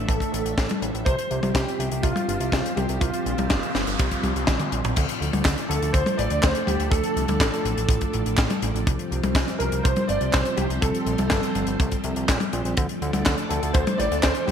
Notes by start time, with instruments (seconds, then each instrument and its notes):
Already playing: string machine F3 A3 D4 A4 E5
0.08 analog synth bass A1, grand piano A4, kick, closed hi-hat
0.20 kick, closed hi-hat
0.32 analog synth bass A1, grand piano A4, closed hi-hat
0.45 analog synth bass A1, closed hi-hat
0.58 analog synth bass A1, kick, snare, closed hi-hat
0.69 closed hi-hat, high tom
0.82 analog synth bass A1, closed hi-hat
0.94 analog synth bass A1, closed hi-hat
1.05 analog synth bass C2, string machine F3 G3 C4 G4 C5, grand piano C5, kick, closed hi-hat
1.19 closed hi-hat
1.31 analog synth bass C2, closed hi-hat
1.43 analog synth bass C2, closed hi-hat, high tom
1.54 analog synth bass C2, grand piano G4, kick, snare, closed hi-hat
1.68 closed hi-hat
1.80 analog synth bass C2, closed hi-hat
1.92 analog synth bass C2, closed hi-hat
2.03 analog synth bass C2, grand piano F4, kick, closed hi-hat
2.16 closed hi-hat, high tom
2.28 analog synth bass G1, closed hi-hat
2.40 analog synth bass C2, closed hi-hat
2.52 analog synth bass C2, kick, snare, closed hi-hat
2.66 closed hi-hat
2.76 analog synth bass C2, grand piano G4, closed hi-hat, high tom
2.89 analog synth bass C2, closed hi-hat
3.00 analog synth bass C2, grand piano F4, kick, closed hi-hat, noise sweep
3.14 closed hi-hat
3.26 analog synth bass A#1, closed hi-hat
3.38 analog synth bass C2, closed hi-hat, high tom
3.50 analog synth bass G1, kick, snare, closed hi-hat
3.63 closed hi-hat
3.75 analog synth bass G1, snare, closed hi-hat
3.87 analog synth bass G1, closed hi-hat
3.99 analog synth bass C2, kick, closed hi-hat
4.11 kick, closed hi-hat
4.23 analog synth bass C2, closed hi-hat, high tom
4.36 analog synth bass C2, closed hi-hat
4.47 analog synth bass A#1, kick, snare, closed hi-hat, mid tom
4.59 closed hi-hat, mid tom
4.72 analog synth bass A#1, closed hi-hat
4.84 analog synth bass A#1, closed hi-hat, mid tom
4.96 analog synth bass D2, string machine F3 A3 D4 A4 D5, kick, closed hi-hat, crash
5.09 closed hi-hat
5.21 analog synth bass D2, closed hi-hat
5.33 analog synth bass D2, closed hi-hat, high tom
5.45 analog synth bass D2, kick, snare, clap, closed hi-hat
5.58 closed hi-hat
5.68 analog synth bass D2, grand piano A4, closed hi-hat
5.82 analog synth bass D2, closed hi-hat
5.93 analog synth bass D2, grand piano C5, kick, closed hi-hat
6.06 closed hi-hat, high tom
6.17 analog synth bass A1, grand piano D5, closed hi-hat
6.30 analog synth bass D2, closed hi-hat
6.42 analog synth bass D2, grand piano C5, kick, snare, clap, closed hi-hat
6.55 closed hi-hat
6.66 analog synth bass D2, grand piano G4, closed hi-hat, high tom
6.80 analog synth bass D2, closed hi-hat
6.90 analog synth bass D2, grand piano A4, kick, closed hi-hat
7.03 closed hi-hat
7.16 analog synth bass C2, closed hi-hat
7.28 analog synth bass D2, closed hi-hat, high tom
7.39 analog synth bass A1, grand piano A4, kick, snare, clap, closed hi-hat
7.53 closed hi-hat
7.65 analog synth bass A1, closed hi-hat
7.77 analog synth bass A1, closed hi-hat
7.89 analog synth bass A1, kick, closed hi-hat
8.01 kick, closed hi-hat
8.13 analog synth bass A1, closed hi-hat
8.26 analog synth bass A1, closed hi-hat
8.37 analog synth bass A1, kick, snare, clap, closed hi-hat
8.50 closed hi-hat, high tom
8.62 analog synth bass A1, closed hi-hat
8.75 analog synth bass A1, closed hi-hat
8.87 analog synth bass C2, string machine G3 C4 G4 C5, kick, closed hi-hat
8.99 closed hi-hat
9.12 analog synth bass C2, closed hi-hat
9.24 analog synth bass C2, closed hi-hat, high tom
9.35 analog synth bass C2, kick, snare, clap, closed hi-hat
9.48 closed hi-hat
9.58 analog synth bass C2, grand piano A#4, closed hi-hat
9.72 analog synth bass C2, closed hi-hat
9.83 analog synth bass C2, grand piano C5, kick, closed hi-hat
9.96 closed hi-hat, high tom
10.08 analog synth bass G1, grand piano D5, closed hi-hat
10.21 analog synth bass C2, closed hi-hat
10.32 analog synth bass C2, grand piano C5, kick, snare, clap, closed hi-hat
10.45 closed hi-hat
10.56 analog synth bass C2, grand piano G4, closed hi-hat, high tom
10.70 analog synth bass C2, closed hi-hat
10.81 analog synth bass C2, grand piano A4, kick, closed hi-hat
10.95 closed hi-hat
11.06 analog synth bass A#1, closed hi-hat
11.18 analog synth bass C2, closed hi-hat, high tom
11.30 analog synth bass G1, grand piano A4, kick, snare, clap, closed hi-hat
11.43 closed hi-hat
11.55 analog synth bass G1, closed hi-hat
11.67 analog synth bass G1, closed hi-hat
11.80 analog synth bass C2, kick, closed hi-hat
11.91 kick, closed hi-hat
12.04 analog synth bass C2, closed hi-hat
12.16 analog synth bass C2, closed hi-hat
12.29 analog synth bass A#1, kick, snare, clap, closed hi-hat
12.40 closed hi-hat, high tom
12.53 analog synth bass A#1, closed hi-hat
12.65 analog synth bass A#1, closed hi-hat
12.77 analog synth bass D2, string machine A3 D4 A4 D5, kick, closed hi-hat
12.89 closed hi-hat
13.02 analog synth bass D2, closed hi-hat
13.13 analog synth bass D2, closed hi-hat, high tom
13.26 analog synth bass D2, kick, snare, clap, closed hi-hat
13.38 closed hi-hat
13.49 analog synth bass D2, grand piano A4, closed hi-hat
13.63 analog synth bass D2, closed hi-hat
13.73 analog synth bass D2, grand piano C5, kick, closed hi-hat
13.87 closed hi-hat, high tom
13.98 analog synth bass A1, grand piano D5, closed hi-hat
14.12 analog synth bass D2, closed hi-hat
14.22 analog synth bass D2, grand piano C5, kick, snare, clap, closed hi-hat
14.35 closed hi-hat
14.46 analog synth bass D2, grand piano G4, high tom